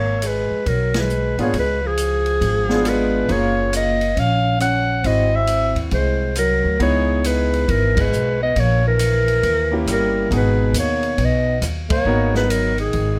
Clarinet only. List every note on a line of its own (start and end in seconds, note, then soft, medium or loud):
0.00 0.29 C#5 medium
0.27 0.70 B4 medium
0.68 1.01 A#4 medium
0.99 1.41 B4 medium
1.42 1.55 C#5 medium
1.59 1.88 B4 medium
1.87 2.90 G#4 medium
2.88 3.34 B4 medium
3.32 3.74 C#5 loud
3.76 4.21 D#5 medium
4.20 4.61 F5 loud
4.61 5.08 F#5 loud
5.06 5.37 D#5 loud
5.36 5.78 E5 medium
5.94 6.34 C5 medium
6.38 6.78 A#4 medium
6.82 7.28 C#5 medium
7.27 7.72 B4 medium
7.70 8.02 A#4 medium
8.01 8.42 B4 medium
8.43 8.61 D#5 medium
8.59 8.86 C#5 medium
8.88 9.85 A#4 loud
9.92 10.30 A#4 medium
10.36 10.74 B4 medium
10.79 11.26 C#5 medium
11.25 11.62 D#5 medium
11.92 12.33 C#5 loud
12.36 12.52 B4 medium
12.50 12.79 A#4 medium
12.80 13.19 G#4 medium